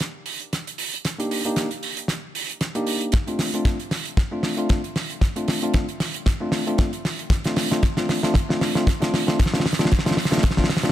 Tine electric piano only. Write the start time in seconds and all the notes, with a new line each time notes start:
1.19 A#3 D4 D#4 G4
1.45 A#3 D4 D#4 G4
2.75 A#3 D4 D#4 G4
3.27 A3 C4 D4 F4
3.54 A3 C4 D4 F4
4.31 A3 C4 D4 F4
4.57 A3 C4 D4 F4
5.36 A3 C4 D4 F4
5.62 A3 C4 D4 F4
6.41 A3 C4 D4 F4
6.67 A3 C4 D4 F4
7.45 A3 C4 D4 F4
7.71 A3 C4 D4 F4
7.97 A3 C4 D4 F4
8.23 A3 C4 D4 F4
8.49 A3 C4 D4 F4
8.75 A3 C4 D4 F4
9.01 A3 C4 D4 F4
9.27 A3 C4 D4 F4
9.53 A3 C4 D4 F4
9.79 A3 C4 D4 F4
10.05 A3 C4 D4 F4
10.31 A3 C4 D4 F4
10.57 A3 C4 D4 F4
10.83 A3 C4 D4 F4